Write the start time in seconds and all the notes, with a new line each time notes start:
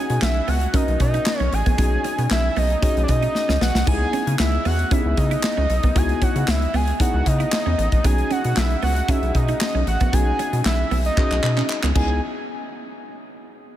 Already playing: C#4 D#4 F#4 G#4 G#5
0.10 B2, muted clean electric guitar stroke, closed hi-hat
0.22 B1 E5, snare, clap
0.48 C#2 B3 F#5, open hi-hat
0.61 closed hi-hat
0.73 C#4 D#4 F#4 A#4 D#5, kick, closed hi-hat
0.88 B1, closed hi-hat
1.00 B2 D#5, muted clean electric guitar stroke, kick, closed hi-hat
1.14 D#4, closed hi-hat
1.26 snare, clap
1.39 B1 C#4 C#5, closed hi-hat
1.53 A1 G#5, muted clean electric guitar stroke, closed hi-hat
1.66 A#1 B3, kick, closed hi-hat
1.78 B1 B3 C#4 D#4 F#4 G#4, kick, closed hi-hat
2.04 C#4, closed hi-hat
2.18 B2, muted clean electric guitar stroke, closed hi-hat
2.31 B1 E5, snare, clap
2.56 B1 B3 D#5, open hi-hat
2.70 closed hi-hat
2.82 C#4 D#4 F#4 G#4 D#5, kick, closed hi-hat
2.97 B1, closed hi-hat
3.04 D5
3.08 B2 D#5, muted clean electric guitar stroke, kick, closed hi-hat
3.22 D#4, closed hi-hat
3.35 muted clean electric guitar stroke, snare
3.49 C#2 C#4, snare
3.61 B1 B3 F#5, snare
3.75 C2, snare
3.87 C#2 B3 D#4 E4 G4 G#5, kick, splash
3.94 G#4
4.13 C#4, closed hi-hat
4.27 C#3, muted clean electric guitar stroke, closed hi-hat
4.39 C#2 E5, snare, clap
4.65 E2 B3 F#5, open hi-hat
4.79 closed hi-hat
4.91 B3 C#4 D#4 E4 G4 E5, kick, closed hi-hat
4.98 G#4
5.05 C#2
5.17 C#3 D#5, muted clean electric guitar stroke, kick, closed hi-hat
5.31 E4, closed hi-hat
5.43 snare, clap
5.57 C#2 C#4
5.70 B1, muted clean electric guitar stroke, closed hi-hat
5.83 C2 B3, kick, closed hi-hat
5.95 C#2 B3 D#4 E4 F#4 G#5, kick, closed hi-hat
6.09 closed hi-hat
6.22 C#4 F#5, kick, closed hi-hat
6.35 C#3, muted clean electric guitar stroke, closed hi-hat
6.48 C#2 E5, snare, clap
6.62 closed hi-hat
6.74 C#2 B3 G#5, open hi-hat
6.88 closed hi-hat
7.00 B3 C#4 D#4 E4 G#4 F#5, kick, closed hi-hat
7.13 C#2
7.26 C#3 D#5, muted clean electric guitar stroke, kick, closed hi-hat
7.40 E4, closed hi-hat
7.52 muted clean electric guitar stroke, snare, clap
7.66 E2 C#4
7.78 A1 B3, closed hi-hat
7.92 A#1, kick, closed hi-hat
8.04 B1 B3 C#4 D#4 F#4 G#4 G#5, kick, closed hi-hat
8.18 closed hi-hat
8.31 C#4 F#5, closed hi-hat
8.44 B2, muted clean electric guitar stroke, closed hi-hat
8.57 B1 E5, snare, clap
8.71 closed hi-hat
8.82 C#2 B3 F#5, open hi-hat
8.96 closed hi-hat
9.08 C#4 D#4 F#4 G#4 E5, kick, closed hi-hat
9.22 B1, closed hi-hat
9.35 B2 D#5, muted clean electric guitar stroke, kick, closed hi-hat
9.48 D#4, closed hi-hat
9.61 snare, clap
9.75 B1 C#4
9.87 A1 F#5, muted clean electric guitar stroke, closed hi-hat
10.00 A#1 B3, kick, closed hi-hat
10.12 B1 B3 C#4 D#4 F#4 G#4 G#5, kick, closed hi-hat
10.39 C#4, closed hi-hat
10.53 B2, muted clean electric guitar stroke, closed hi-hat
10.65 B1 E5, snare, clap
10.91 B1 B3, open hi-hat
11.05 D#5, closed hi-hat
11.17 B3 C#4 D#4 F#4 G#4, kick, clap
11.31 B1, clap
11.43 B2, muted clean electric guitar stroke, clap
11.57 C#4, clap
11.69 muted clean electric guitar stroke, clap
11.83 C#2 B3, clap
11.95 C#2 B3 C#4 D#4 E4 G#4 G#5, kick, crash